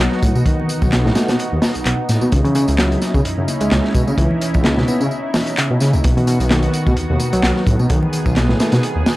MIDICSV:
0, 0, Header, 1, 5, 480
1, 0, Start_track
1, 0, Tempo, 465116
1, 474, Time_signature, 4, 2, 24, 8
1, 9458, End_track
2, 0, Start_track
2, 0, Title_t, "Analog synth pad"
2, 0, Program_c, 0, 89
2, 0, Note_on_c, 0, 59, 76
2, 0, Note_on_c, 0, 63, 84
2, 0, Note_on_c, 0, 66, 89
2, 2355, Note_off_c, 0, 59, 0
2, 2359, Note_off_c, 0, 66, 0
2, 2404, Note_on_c, 0, 64, 90
2, 2408, Note_on_c, 0, 61, 72
2, 6190, Note_off_c, 0, 63, 0
2, 6201, Note_off_c, 0, 64, 0
2, 6203, Note_off_c, 0, 61, 0
2, 6232, Note_on_c, 0, 51, 82
2, 6232, Note_on_c, 0, 59, 76
2, 6234, Note_on_c, 0, 66, 94
2, 8135, Note_off_c, 0, 66, 0
2, 8160, Note_on_c, 0, 68, 95
2, 9458, Note_off_c, 0, 51, 0
2, 9458, Note_off_c, 0, 59, 0
2, 9458, Note_off_c, 0, 68, 0
2, 9458, End_track
3, 0, Start_track
3, 0, Title_t, "Reed electric piano"
3, 0, Program_c, 1, 4
3, 0, Note_on_c, 1, 54, 99
3, 354, Note_off_c, 1, 54, 0
3, 480, Note_on_c, 1, 51, 89
3, 946, Note_off_c, 1, 51, 0
3, 961, Note_on_c, 1, 47, 84
3, 1083, Note_off_c, 1, 47, 0
3, 1089, Note_on_c, 1, 45, 108
3, 1175, Note_off_c, 1, 45, 0
3, 1199, Note_on_c, 1, 57, 79
3, 1322, Note_off_c, 1, 57, 0
3, 1326, Note_on_c, 1, 47, 76
3, 1378, Note_off_c, 1, 47, 0
3, 1915, Note_on_c, 1, 47, 88
3, 2040, Note_off_c, 1, 47, 0
3, 2287, Note_on_c, 1, 47, 78
3, 2339, Note_off_c, 1, 47, 0
3, 2396, Note_on_c, 1, 49, 86
3, 2514, Note_off_c, 1, 49, 0
3, 2525, Note_on_c, 1, 49, 78
3, 2623, Note_off_c, 1, 49, 0
3, 2637, Note_on_c, 1, 49, 83
3, 2742, Note_off_c, 1, 49, 0
3, 2879, Note_on_c, 1, 54, 88
3, 3235, Note_off_c, 1, 54, 0
3, 3252, Note_on_c, 1, 47, 81
3, 3301, Note_off_c, 1, 47, 0
3, 3492, Note_on_c, 1, 49, 80
3, 3716, Note_off_c, 1, 49, 0
3, 3727, Note_on_c, 1, 56, 100
3, 4193, Note_off_c, 1, 56, 0
3, 4317, Note_on_c, 1, 52, 87
3, 4785, Note_off_c, 1, 52, 0
3, 4798, Note_on_c, 1, 49, 86
3, 4921, Note_off_c, 1, 49, 0
3, 4929, Note_on_c, 1, 47, 104
3, 5015, Note_off_c, 1, 47, 0
3, 5039, Note_on_c, 1, 59, 80
3, 5162, Note_off_c, 1, 59, 0
3, 5167, Note_on_c, 1, 49, 75
3, 5219, Note_off_c, 1, 49, 0
3, 5759, Note_on_c, 1, 49, 83
3, 5882, Note_off_c, 1, 49, 0
3, 6126, Note_on_c, 1, 49, 78
3, 6178, Note_off_c, 1, 49, 0
3, 6234, Note_on_c, 1, 47, 90
3, 6353, Note_off_c, 1, 47, 0
3, 6370, Note_on_c, 1, 47, 79
3, 6465, Note_off_c, 1, 47, 0
3, 6476, Note_on_c, 1, 47, 84
3, 6581, Note_off_c, 1, 47, 0
3, 6719, Note_on_c, 1, 51, 86
3, 7075, Note_off_c, 1, 51, 0
3, 7088, Note_on_c, 1, 45, 73
3, 7139, Note_off_c, 1, 45, 0
3, 7325, Note_on_c, 1, 47, 80
3, 7552, Note_off_c, 1, 47, 0
3, 7565, Note_on_c, 1, 54, 99
3, 8032, Note_off_c, 1, 54, 0
3, 8156, Note_on_c, 1, 51, 83
3, 8624, Note_off_c, 1, 51, 0
3, 8633, Note_on_c, 1, 47, 88
3, 8759, Note_off_c, 1, 47, 0
3, 8768, Note_on_c, 1, 45, 106
3, 8854, Note_off_c, 1, 45, 0
3, 8876, Note_on_c, 1, 57, 78
3, 9000, Note_off_c, 1, 57, 0
3, 9005, Note_on_c, 1, 47, 79
3, 9058, Note_off_c, 1, 47, 0
3, 9458, End_track
4, 0, Start_track
4, 0, Title_t, "Detuned saw bass"
4, 0, Program_c, 2, 39
4, 231, Note_on_c, 2, 45, 82
4, 324, Note_off_c, 2, 45, 0
4, 363, Note_on_c, 2, 47, 90
4, 439, Note_off_c, 2, 47, 0
4, 470, Note_on_c, 2, 35, 99
4, 563, Note_off_c, 2, 35, 0
4, 844, Note_on_c, 2, 35, 90
4, 1140, Note_off_c, 2, 35, 0
4, 1327, Note_on_c, 2, 47, 81
4, 1401, Note_off_c, 2, 47, 0
4, 1568, Note_on_c, 2, 39, 91
4, 1642, Note_off_c, 2, 39, 0
4, 1810, Note_on_c, 2, 35, 45
4, 1894, Note_off_c, 2, 35, 0
4, 1915, Note_on_c, 2, 35, 95
4, 2005, Note_off_c, 2, 35, 0
4, 2156, Note_on_c, 2, 45, 88
4, 2246, Note_off_c, 2, 45, 0
4, 2286, Note_on_c, 2, 47, 89
4, 2361, Note_off_c, 2, 47, 0
4, 2398, Note_on_c, 2, 37, 103
4, 2487, Note_off_c, 2, 37, 0
4, 2764, Note_on_c, 2, 37, 89
4, 3060, Note_off_c, 2, 37, 0
4, 3242, Note_on_c, 2, 49, 86
4, 3318, Note_off_c, 2, 49, 0
4, 3348, Note_on_c, 2, 42, 46
4, 3457, Note_off_c, 2, 42, 0
4, 3485, Note_on_c, 2, 42, 95
4, 3560, Note_off_c, 2, 42, 0
4, 3722, Note_on_c, 2, 37, 45
4, 3810, Note_off_c, 2, 37, 0
4, 3833, Note_on_c, 2, 37, 101
4, 3925, Note_off_c, 2, 37, 0
4, 4072, Note_on_c, 2, 47, 87
4, 4164, Note_off_c, 2, 47, 0
4, 4205, Note_on_c, 2, 49, 85
4, 4280, Note_off_c, 2, 49, 0
4, 4308, Note_on_c, 2, 37, 107
4, 4402, Note_off_c, 2, 37, 0
4, 4691, Note_on_c, 2, 37, 89
4, 4983, Note_off_c, 2, 37, 0
4, 5165, Note_on_c, 2, 49, 83
4, 5240, Note_off_c, 2, 49, 0
4, 5884, Note_on_c, 2, 47, 84
4, 5960, Note_off_c, 2, 47, 0
4, 5993, Note_on_c, 2, 49, 96
4, 6125, Note_on_c, 2, 37, 101
4, 6140, Note_off_c, 2, 49, 0
4, 6200, Note_off_c, 2, 37, 0
4, 6238, Note_on_c, 2, 35, 104
4, 6327, Note_off_c, 2, 35, 0
4, 6601, Note_on_c, 2, 35, 88
4, 6898, Note_off_c, 2, 35, 0
4, 7084, Note_on_c, 2, 47, 79
4, 7160, Note_off_c, 2, 47, 0
4, 7190, Note_on_c, 2, 39, 44
4, 7297, Note_off_c, 2, 39, 0
4, 7326, Note_on_c, 2, 39, 87
4, 7401, Note_off_c, 2, 39, 0
4, 7564, Note_on_c, 2, 35, 46
4, 7652, Note_off_c, 2, 35, 0
4, 7672, Note_on_c, 2, 35, 96
4, 7764, Note_off_c, 2, 35, 0
4, 7911, Note_on_c, 2, 45, 87
4, 8004, Note_off_c, 2, 45, 0
4, 8039, Note_on_c, 2, 47, 88
4, 8117, Note_off_c, 2, 47, 0
4, 8150, Note_on_c, 2, 35, 108
4, 8243, Note_off_c, 2, 35, 0
4, 8520, Note_on_c, 2, 35, 87
4, 8818, Note_off_c, 2, 35, 0
4, 9001, Note_on_c, 2, 47, 83
4, 9078, Note_off_c, 2, 47, 0
4, 9242, Note_on_c, 2, 39, 91
4, 9319, Note_off_c, 2, 39, 0
4, 9458, End_track
5, 0, Start_track
5, 0, Title_t, "Drums"
5, 0, Note_on_c, 9, 42, 90
5, 99, Note_off_c, 9, 42, 0
5, 125, Note_on_c, 9, 38, 35
5, 228, Note_off_c, 9, 38, 0
5, 232, Note_on_c, 9, 54, 79
5, 234, Note_on_c, 9, 36, 105
5, 246, Note_on_c, 9, 42, 75
5, 335, Note_off_c, 9, 54, 0
5, 337, Note_off_c, 9, 36, 0
5, 349, Note_off_c, 9, 42, 0
5, 366, Note_on_c, 9, 54, 44
5, 373, Note_on_c, 9, 63, 95
5, 469, Note_off_c, 9, 54, 0
5, 471, Note_on_c, 9, 36, 108
5, 472, Note_on_c, 9, 42, 86
5, 472, Note_on_c, 9, 54, 34
5, 477, Note_off_c, 9, 63, 0
5, 574, Note_off_c, 9, 36, 0
5, 575, Note_off_c, 9, 42, 0
5, 575, Note_off_c, 9, 54, 0
5, 614, Note_on_c, 9, 64, 77
5, 712, Note_on_c, 9, 54, 78
5, 717, Note_off_c, 9, 64, 0
5, 718, Note_on_c, 9, 42, 64
5, 815, Note_off_c, 9, 54, 0
5, 822, Note_off_c, 9, 42, 0
5, 843, Note_on_c, 9, 54, 45
5, 845, Note_on_c, 9, 60, 56
5, 846, Note_on_c, 9, 36, 98
5, 946, Note_off_c, 9, 54, 0
5, 949, Note_off_c, 9, 36, 0
5, 949, Note_off_c, 9, 60, 0
5, 950, Note_on_c, 9, 39, 112
5, 950, Note_on_c, 9, 54, 35
5, 954, Note_on_c, 9, 42, 89
5, 957, Note_on_c, 9, 63, 95
5, 959, Note_on_c, 9, 38, 118
5, 1053, Note_off_c, 9, 39, 0
5, 1053, Note_off_c, 9, 54, 0
5, 1057, Note_off_c, 9, 42, 0
5, 1060, Note_off_c, 9, 63, 0
5, 1062, Note_off_c, 9, 38, 0
5, 1095, Note_on_c, 9, 38, 58
5, 1189, Note_on_c, 9, 42, 86
5, 1190, Note_on_c, 9, 54, 77
5, 1194, Note_off_c, 9, 38, 0
5, 1194, Note_on_c, 9, 38, 109
5, 1292, Note_off_c, 9, 42, 0
5, 1293, Note_off_c, 9, 54, 0
5, 1297, Note_off_c, 9, 38, 0
5, 1324, Note_on_c, 9, 54, 44
5, 1332, Note_on_c, 9, 38, 96
5, 1333, Note_on_c, 9, 42, 82
5, 1427, Note_off_c, 9, 54, 0
5, 1435, Note_off_c, 9, 38, 0
5, 1435, Note_on_c, 9, 54, 35
5, 1436, Note_off_c, 9, 42, 0
5, 1440, Note_on_c, 9, 42, 86
5, 1538, Note_off_c, 9, 54, 0
5, 1543, Note_off_c, 9, 42, 0
5, 1671, Note_on_c, 9, 38, 113
5, 1673, Note_on_c, 9, 54, 75
5, 1677, Note_on_c, 9, 46, 81
5, 1689, Note_on_c, 9, 63, 71
5, 1774, Note_off_c, 9, 38, 0
5, 1776, Note_off_c, 9, 54, 0
5, 1780, Note_off_c, 9, 46, 0
5, 1793, Note_off_c, 9, 63, 0
5, 1805, Note_on_c, 9, 54, 45
5, 1809, Note_on_c, 9, 42, 46
5, 1908, Note_off_c, 9, 54, 0
5, 1912, Note_off_c, 9, 42, 0
5, 1914, Note_on_c, 9, 39, 107
5, 1914, Note_on_c, 9, 54, 31
5, 1917, Note_on_c, 9, 42, 95
5, 2017, Note_off_c, 9, 39, 0
5, 2017, Note_off_c, 9, 54, 0
5, 2020, Note_off_c, 9, 42, 0
5, 2154, Note_on_c, 9, 54, 80
5, 2160, Note_on_c, 9, 42, 68
5, 2162, Note_on_c, 9, 38, 39
5, 2257, Note_off_c, 9, 54, 0
5, 2263, Note_off_c, 9, 42, 0
5, 2266, Note_off_c, 9, 38, 0
5, 2284, Note_on_c, 9, 54, 45
5, 2287, Note_on_c, 9, 63, 99
5, 2387, Note_off_c, 9, 54, 0
5, 2390, Note_off_c, 9, 63, 0
5, 2392, Note_on_c, 9, 54, 33
5, 2398, Note_on_c, 9, 36, 113
5, 2398, Note_on_c, 9, 42, 90
5, 2495, Note_off_c, 9, 54, 0
5, 2501, Note_off_c, 9, 36, 0
5, 2502, Note_off_c, 9, 42, 0
5, 2528, Note_on_c, 9, 64, 79
5, 2529, Note_on_c, 9, 42, 45
5, 2631, Note_on_c, 9, 54, 76
5, 2632, Note_off_c, 9, 42, 0
5, 2632, Note_off_c, 9, 64, 0
5, 2637, Note_on_c, 9, 42, 72
5, 2734, Note_off_c, 9, 54, 0
5, 2740, Note_off_c, 9, 42, 0
5, 2762, Note_on_c, 9, 54, 42
5, 2764, Note_on_c, 9, 60, 50
5, 2769, Note_on_c, 9, 42, 47
5, 2865, Note_off_c, 9, 54, 0
5, 2867, Note_off_c, 9, 60, 0
5, 2870, Note_on_c, 9, 63, 106
5, 2873, Note_off_c, 9, 42, 0
5, 2873, Note_on_c, 9, 39, 115
5, 2873, Note_on_c, 9, 54, 32
5, 2874, Note_on_c, 9, 38, 127
5, 2876, Note_on_c, 9, 42, 87
5, 2973, Note_off_c, 9, 63, 0
5, 2977, Note_off_c, 9, 38, 0
5, 2977, Note_off_c, 9, 39, 0
5, 2977, Note_off_c, 9, 54, 0
5, 2979, Note_off_c, 9, 42, 0
5, 3011, Note_on_c, 9, 42, 40
5, 3113, Note_on_c, 9, 54, 71
5, 3114, Note_off_c, 9, 42, 0
5, 3114, Note_on_c, 9, 38, 36
5, 3116, Note_on_c, 9, 42, 71
5, 3216, Note_off_c, 9, 54, 0
5, 3217, Note_off_c, 9, 38, 0
5, 3220, Note_off_c, 9, 42, 0
5, 3245, Note_on_c, 9, 36, 98
5, 3246, Note_on_c, 9, 54, 44
5, 3348, Note_off_c, 9, 36, 0
5, 3350, Note_off_c, 9, 54, 0
5, 3353, Note_on_c, 9, 54, 33
5, 3355, Note_on_c, 9, 42, 97
5, 3456, Note_off_c, 9, 54, 0
5, 3458, Note_off_c, 9, 42, 0
5, 3591, Note_on_c, 9, 54, 74
5, 3593, Note_on_c, 9, 42, 65
5, 3594, Note_on_c, 9, 63, 73
5, 3694, Note_off_c, 9, 54, 0
5, 3697, Note_off_c, 9, 42, 0
5, 3697, Note_off_c, 9, 63, 0
5, 3720, Note_on_c, 9, 42, 41
5, 3724, Note_on_c, 9, 54, 45
5, 3824, Note_off_c, 9, 42, 0
5, 3827, Note_off_c, 9, 54, 0
5, 3833, Note_on_c, 9, 39, 105
5, 3833, Note_on_c, 9, 54, 31
5, 3836, Note_on_c, 9, 38, 123
5, 3837, Note_on_c, 9, 42, 91
5, 3936, Note_off_c, 9, 39, 0
5, 3936, Note_off_c, 9, 54, 0
5, 3939, Note_off_c, 9, 38, 0
5, 3940, Note_off_c, 9, 42, 0
5, 3969, Note_on_c, 9, 38, 39
5, 4071, Note_on_c, 9, 54, 80
5, 4072, Note_on_c, 9, 36, 86
5, 4073, Note_off_c, 9, 38, 0
5, 4075, Note_on_c, 9, 42, 69
5, 4174, Note_off_c, 9, 54, 0
5, 4175, Note_off_c, 9, 36, 0
5, 4178, Note_off_c, 9, 42, 0
5, 4205, Note_on_c, 9, 54, 43
5, 4207, Note_on_c, 9, 63, 104
5, 4308, Note_off_c, 9, 54, 0
5, 4310, Note_off_c, 9, 63, 0
5, 4311, Note_on_c, 9, 36, 111
5, 4313, Note_on_c, 9, 42, 88
5, 4313, Note_on_c, 9, 54, 31
5, 4414, Note_off_c, 9, 36, 0
5, 4416, Note_off_c, 9, 42, 0
5, 4417, Note_off_c, 9, 54, 0
5, 4444, Note_on_c, 9, 64, 71
5, 4548, Note_off_c, 9, 64, 0
5, 4556, Note_on_c, 9, 54, 73
5, 4557, Note_on_c, 9, 42, 74
5, 4659, Note_off_c, 9, 54, 0
5, 4660, Note_off_c, 9, 42, 0
5, 4687, Note_on_c, 9, 54, 43
5, 4692, Note_on_c, 9, 60, 48
5, 4693, Note_on_c, 9, 36, 102
5, 4785, Note_on_c, 9, 63, 92
5, 4790, Note_off_c, 9, 54, 0
5, 4793, Note_on_c, 9, 38, 120
5, 4796, Note_off_c, 9, 60, 0
5, 4797, Note_off_c, 9, 36, 0
5, 4797, Note_on_c, 9, 39, 111
5, 4797, Note_on_c, 9, 54, 32
5, 4798, Note_on_c, 9, 42, 89
5, 4889, Note_off_c, 9, 63, 0
5, 4896, Note_off_c, 9, 38, 0
5, 4901, Note_off_c, 9, 39, 0
5, 4901, Note_off_c, 9, 42, 0
5, 4901, Note_off_c, 9, 54, 0
5, 4929, Note_on_c, 9, 38, 54
5, 5032, Note_off_c, 9, 38, 0
5, 5034, Note_on_c, 9, 54, 74
5, 5138, Note_off_c, 9, 54, 0
5, 5166, Note_on_c, 9, 54, 42
5, 5269, Note_off_c, 9, 54, 0
5, 5274, Note_on_c, 9, 54, 33
5, 5377, Note_off_c, 9, 54, 0
5, 5510, Note_on_c, 9, 54, 71
5, 5511, Note_on_c, 9, 38, 115
5, 5512, Note_on_c, 9, 46, 86
5, 5514, Note_on_c, 9, 63, 68
5, 5525, Note_on_c, 9, 64, 85
5, 5613, Note_off_c, 9, 54, 0
5, 5614, Note_off_c, 9, 38, 0
5, 5615, Note_off_c, 9, 46, 0
5, 5617, Note_off_c, 9, 63, 0
5, 5628, Note_off_c, 9, 64, 0
5, 5642, Note_on_c, 9, 42, 40
5, 5645, Note_on_c, 9, 54, 43
5, 5745, Note_off_c, 9, 42, 0
5, 5748, Note_off_c, 9, 54, 0
5, 5751, Note_on_c, 9, 39, 111
5, 5751, Note_on_c, 9, 54, 30
5, 5755, Note_on_c, 9, 42, 94
5, 5855, Note_off_c, 9, 39, 0
5, 5855, Note_off_c, 9, 54, 0
5, 5858, Note_off_c, 9, 42, 0
5, 5990, Note_on_c, 9, 54, 75
5, 5996, Note_on_c, 9, 38, 38
5, 6002, Note_on_c, 9, 42, 65
5, 6093, Note_off_c, 9, 54, 0
5, 6099, Note_off_c, 9, 38, 0
5, 6105, Note_off_c, 9, 42, 0
5, 6123, Note_on_c, 9, 54, 43
5, 6131, Note_on_c, 9, 63, 100
5, 6226, Note_off_c, 9, 54, 0
5, 6232, Note_on_c, 9, 54, 31
5, 6234, Note_off_c, 9, 63, 0
5, 6234, Note_on_c, 9, 42, 89
5, 6239, Note_on_c, 9, 36, 119
5, 6336, Note_off_c, 9, 54, 0
5, 6337, Note_off_c, 9, 42, 0
5, 6342, Note_off_c, 9, 36, 0
5, 6369, Note_on_c, 9, 64, 83
5, 6371, Note_on_c, 9, 42, 42
5, 6472, Note_off_c, 9, 64, 0
5, 6473, Note_on_c, 9, 54, 74
5, 6474, Note_off_c, 9, 42, 0
5, 6478, Note_on_c, 9, 42, 69
5, 6576, Note_off_c, 9, 54, 0
5, 6581, Note_off_c, 9, 42, 0
5, 6606, Note_on_c, 9, 54, 41
5, 6611, Note_on_c, 9, 60, 55
5, 6613, Note_on_c, 9, 42, 40
5, 6709, Note_off_c, 9, 54, 0
5, 6714, Note_off_c, 9, 42, 0
5, 6714, Note_off_c, 9, 60, 0
5, 6714, Note_on_c, 9, 38, 127
5, 6714, Note_on_c, 9, 39, 105
5, 6714, Note_on_c, 9, 42, 98
5, 6714, Note_on_c, 9, 54, 29
5, 6715, Note_on_c, 9, 63, 91
5, 6817, Note_off_c, 9, 38, 0
5, 6817, Note_off_c, 9, 39, 0
5, 6817, Note_off_c, 9, 42, 0
5, 6817, Note_off_c, 9, 54, 0
5, 6818, Note_off_c, 9, 63, 0
5, 6837, Note_on_c, 9, 42, 46
5, 6941, Note_off_c, 9, 42, 0
5, 6950, Note_on_c, 9, 42, 71
5, 6952, Note_on_c, 9, 54, 67
5, 7054, Note_off_c, 9, 42, 0
5, 7055, Note_off_c, 9, 54, 0
5, 7086, Note_on_c, 9, 36, 103
5, 7087, Note_on_c, 9, 54, 39
5, 7189, Note_off_c, 9, 36, 0
5, 7189, Note_on_c, 9, 42, 84
5, 7190, Note_off_c, 9, 54, 0
5, 7197, Note_on_c, 9, 54, 31
5, 7292, Note_off_c, 9, 42, 0
5, 7301, Note_off_c, 9, 54, 0
5, 7426, Note_on_c, 9, 42, 66
5, 7432, Note_on_c, 9, 54, 68
5, 7437, Note_on_c, 9, 63, 62
5, 7529, Note_off_c, 9, 42, 0
5, 7535, Note_off_c, 9, 54, 0
5, 7540, Note_off_c, 9, 63, 0
5, 7561, Note_on_c, 9, 42, 46
5, 7565, Note_on_c, 9, 54, 42
5, 7664, Note_off_c, 9, 42, 0
5, 7668, Note_off_c, 9, 54, 0
5, 7670, Note_on_c, 9, 38, 127
5, 7674, Note_on_c, 9, 39, 103
5, 7674, Note_on_c, 9, 54, 30
5, 7678, Note_on_c, 9, 42, 89
5, 7773, Note_off_c, 9, 38, 0
5, 7777, Note_off_c, 9, 39, 0
5, 7777, Note_off_c, 9, 54, 0
5, 7781, Note_off_c, 9, 42, 0
5, 7805, Note_on_c, 9, 38, 36
5, 7908, Note_off_c, 9, 38, 0
5, 7911, Note_on_c, 9, 36, 101
5, 7911, Note_on_c, 9, 54, 72
5, 7918, Note_on_c, 9, 42, 74
5, 8015, Note_off_c, 9, 36, 0
5, 8015, Note_off_c, 9, 54, 0
5, 8021, Note_off_c, 9, 42, 0
5, 8043, Note_on_c, 9, 54, 40
5, 8047, Note_on_c, 9, 63, 92
5, 8146, Note_off_c, 9, 54, 0
5, 8149, Note_on_c, 9, 42, 91
5, 8150, Note_off_c, 9, 63, 0
5, 8151, Note_on_c, 9, 54, 29
5, 8152, Note_on_c, 9, 36, 118
5, 8252, Note_off_c, 9, 42, 0
5, 8254, Note_off_c, 9, 54, 0
5, 8256, Note_off_c, 9, 36, 0
5, 8282, Note_on_c, 9, 64, 83
5, 8385, Note_off_c, 9, 64, 0
5, 8387, Note_on_c, 9, 42, 64
5, 8390, Note_on_c, 9, 54, 71
5, 8490, Note_off_c, 9, 42, 0
5, 8493, Note_off_c, 9, 54, 0
5, 8522, Note_on_c, 9, 54, 41
5, 8523, Note_on_c, 9, 36, 99
5, 8535, Note_on_c, 9, 60, 53
5, 8625, Note_off_c, 9, 54, 0
5, 8626, Note_off_c, 9, 36, 0
5, 8628, Note_on_c, 9, 42, 86
5, 8631, Note_on_c, 9, 39, 102
5, 8631, Note_on_c, 9, 54, 31
5, 8636, Note_on_c, 9, 38, 122
5, 8638, Note_off_c, 9, 60, 0
5, 8640, Note_on_c, 9, 63, 94
5, 8731, Note_off_c, 9, 42, 0
5, 8734, Note_off_c, 9, 39, 0
5, 8734, Note_off_c, 9, 54, 0
5, 8739, Note_off_c, 9, 38, 0
5, 8743, Note_off_c, 9, 63, 0
5, 8765, Note_on_c, 9, 38, 58
5, 8868, Note_off_c, 9, 38, 0
5, 8872, Note_on_c, 9, 54, 67
5, 8874, Note_on_c, 9, 42, 85
5, 8878, Note_on_c, 9, 38, 110
5, 8975, Note_off_c, 9, 54, 0
5, 8977, Note_off_c, 9, 42, 0
5, 8982, Note_off_c, 9, 38, 0
5, 8998, Note_on_c, 9, 42, 80
5, 9005, Note_on_c, 9, 54, 41
5, 9008, Note_on_c, 9, 38, 92
5, 9101, Note_off_c, 9, 42, 0
5, 9108, Note_off_c, 9, 54, 0
5, 9112, Note_off_c, 9, 38, 0
5, 9114, Note_on_c, 9, 42, 88
5, 9114, Note_on_c, 9, 54, 31
5, 9217, Note_off_c, 9, 42, 0
5, 9217, Note_off_c, 9, 54, 0
5, 9351, Note_on_c, 9, 63, 70
5, 9352, Note_on_c, 9, 54, 74
5, 9354, Note_on_c, 9, 38, 124
5, 9356, Note_on_c, 9, 46, 78
5, 9454, Note_off_c, 9, 63, 0
5, 9455, Note_off_c, 9, 54, 0
5, 9457, Note_off_c, 9, 38, 0
5, 9458, Note_off_c, 9, 46, 0
5, 9458, End_track
0, 0, End_of_file